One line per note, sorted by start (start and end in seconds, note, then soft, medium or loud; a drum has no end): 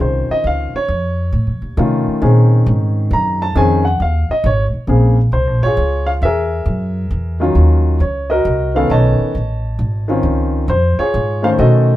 0.00 0.27 C2 medium
0.00 0.79 D#3 medium
0.00 0.80 C4 soft
0.00 0.80 C#4 medium
0.00 0.80 F4 medium
0.00 0.29 C5 medium
0.29 0.45 D#5 medium
0.29 muted upright bass stroke soft
0.44 0.71 C#2 medium
0.44 0.74 F5 medium
0.73 1.75 C#5 medium
0.73 muted upright bass stroke soft
0.89 1.32 F2 medium
1.32 1.48 A2 medium
1.47 1.61 F2 medium
1.62 1.76 D#2 medium
1.77 2.05 C3 medium
1.77 2.20 D#3 medium
1.77 2.22 A3 medium
1.77 2.21 C#4 medium
1.77 2.23 F4 medium
2.07 muted upright bass stroke soft
2.21 2.65 A#2 medium
2.21 3.46 D#3 medium
2.21 3.46 C4 medium
2.21 3.46 C#4 medium
2.21 3.47 G#4 medium
2.66 3.10 G#2 medium
3.11 3.54 F#2 medium
3.11 3.41 A#5 medium
3.42 3.56 A5 medium
3.55 3.99 F2 medium
3.55 3.82 D#3 medium
3.55 3.82 C4 medium
3.55 3.82 C#4 medium
3.55 3.83 G#4 medium
3.55 3.85 G#5 medium
3.85 3.99 F#5 medium
4.00 4.27 D#2 medium
4.00 4.30 F5 medium
4.29 4.45 D#5 medium
4.29 muted upright bass stroke soft
4.44 4.71 G#1 loud
4.44 4.63 C#5 medium
4.73 muted upright bass stroke soft
4.87 5.31 A#1 medium
4.87 5.15 C#3 medium
4.87 5.15 A#3 medium
4.87 5.15 C4 medium
4.87 5.16 G#4 medium
5.32 5.47 C2 medium
5.32 5.63 C5 medium
5.47 5.61 A#1 medium
5.62 5.76 G#1 medium
5.62 6.20 F4 medium
5.62 6.20 G#4 medium
5.62 6.09 C#5 loud
5.77 6.20 C#2 medium
6.06 6.11 F5 medium
6.22 6.65 E2 medium
6.22 7.38 G#4 medium
6.22 7.38 A#4 medium
6.22 7.37 E5 medium
6.66 7.09 F#2 medium
7.11 7.54 E2 medium
7.40 7.97 D#3 medium
7.40 7.97 F#3 medium
7.40 7.98 C#4 medium
7.40 7.98 F4 medium
7.55 7.99 D#2 medium
8.00 8.44 C#2 medium
8.00 8.28 C#5 medium
8.30 8.86 F#4 medium
8.30 8.86 A#4 medium
8.30 8.71 D#5 medium
8.45 8.88 C2 medium
8.75 9.31 D#3 medium
8.75 9.32 B3 medium
8.75 9.32 C#4 medium
8.75 9.32 A4 medium
8.75 8.89 F5 medium
8.90 9.17 B1 medium
8.90 10.05 C#5 medium
8.90 10.05 D#5 medium
8.90 10.05 A5 medium
9.20 muted upright bass stroke soft
9.35 9.78 A1 medium
9.79 10.22 G#1 medium
10.08 10.65 D#3 medium
10.08 10.65 C4 medium
10.08 10.66 C#4 medium
10.08 10.66 F4 medium
10.23 10.67 C#2 medium
10.68 10.96 F2 medium
10.68 10.96 C5 medium
10.98 11.54 F4 medium
10.98 11.55 G#4 medium
10.98 11.40 C#5 loud
10.98 muted upright bass stroke soft
11.14 11.57 G#2 medium
11.42 11.96 D#3 medium
11.42 11.96 A3 medium
11.42 11.96 C#4 medium
11.42 11.96 C5 medium
11.42 11.49 F5 loud
11.58 11.96 B2 medium
11.58 11.96 F#4 medium
11.58 11.96 A4 medium
11.58 11.96 D#5 medium